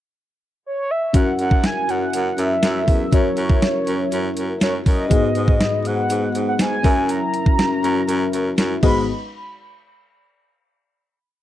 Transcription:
0.66 C#5
0.91 E5
1.13 F#2 F#3 C#4 E4 F#4 A#4 E5 F#5, kick, closed hi-hat
1.39 F#2 F#5, closed hi-hat
1.51 kick
1.64 G#5, snare, closed hi-hat
1.88 F#2 F#5, closed hi-hat
2.13 F#2, closed hi-hat
2.38 F#2 E5, closed hi-hat
2.63 F#2, snare, closed hi-hat
2.88 E2, kick, open hi-hat
3.12 F#2 C#4 F#4 A#4 C#5 E5, kick, closed hi-hat
3.37 F#2, closed hi-hat
3.50 kick
3.62 snare, closed hi-hat
3.87 F#2, closed hi-hat
4.12 F#2, closed hi-hat
4.37 F#2, closed hi-hat
4.61 F#2 C#5, snare, closed hi-hat
4.86 F#2 D#5, kick, open hi-hat
5.10 G#2 G#3 B3 F#4 G#4 B4 D#5, kick, closed hi-hat
5.35 G#2, closed hi-hat
5.48 kick
5.60 snare, closed hi-hat
5.85 G#2 F#5, closed hi-hat
6.10 G#2, closed hi-hat
6.35 G#2, closed hi-hat
6.49 F#5
6.59 G#2 G#5, snare, closed hi-hat
6.83 F#2 F#3 C#4 F#4 A#4 E5, kick, open hi-hat
7.09 A#5, closed hi-hat
7.34 closed hi-hat
7.46 kick
7.59 snare, closed hi-hat
7.83 F#2, closed hi-hat
8.08 F#2, closed hi-hat
8.33 F#2, closed hi-hat
8.58 F#2, snare, closed hi-hat
8.82 G#1 G#2 G#3 B3 D#4 F#4 G#4 B4 D#5 B5, kick, crash

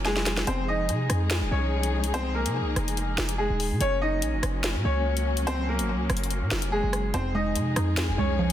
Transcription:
Already playing: F1 F#3 A#3 C#4
0.05 G#3 G#4, snare
0.17 snare
0.26 snare, closed hi-hat
0.37 snare
0.47 F1 F3 G#3 C4 D#4 G#4 C5, closed hi-hat
0.68 D#4 D#5
0.89 C3, closed hi-hat
1.10 F2, cross-stick, closed hi-hat
1.31 snare, closed hi-hat
1.42 D#1
1.51 C2 C#4 C#5
1.83 closed hi-hat
2.04 closed hi-hat
2.14 C4 C5, closed hi-hat
2.34 A#3 A#4
2.46 C3, closed hi-hat
2.61 C2
2.76 F1, cross-stick, closed hi-hat
2.88 closed hi-hat
2.97 closed hi-hat
3.18 F1, snare
3.29 closed hi-hat
3.38 G#3 G#4
3.50 D#1
3.60 open hi-hat
3.71 C3
3.81 F#1 F#3 A#3 C#4 C#5, closed hi-hat
4.02 D#4 D#5
4.22 A#1, closed hi-hat
4.33 F#1
4.43 F#1, cross-stick, closed hi-hat
4.64 snare, closed hi-hat
4.75 A#2
4.85 C#2 C#4 C#5
5.17 closed hi-hat
5.37 closed hi-hat
5.47 C4 C5, closed hi-hat
5.69 A#3 A#4
5.79 G#1, closed hi-hat
5.94 C#2
6.10 F#1, cross-stick, closed hi-hat
6.17 closed hi-hat
6.24 closed hi-hat
6.31 closed hi-hat
6.42 A#2
6.51 F1, snare
6.62 closed hi-hat
6.72 G#3 G#4
6.83 F#1
6.93 cross-stick, closed hi-hat
7.14 F1 F2 F3 G#3 C4 D#4 G#4 C5, closed hi-hat
7.35 G#3 D#4 D#5
7.55 C3, closed hi-hat
7.76 F2 D#4, cross-stick, closed hi-hat
7.97 F2, snare, closed hi-hat
8.08 D#1
8.18 C2 G#3 C#4 C#5
8.39 F3

